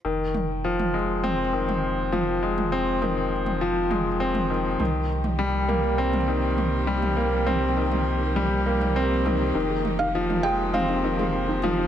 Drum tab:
T2 |--o--o--o--o--o-|-o--o--o--o--o--|o--o--o--o--o--o|--o--o--o--o--o-|

T2 |--o--o--o--o--o-|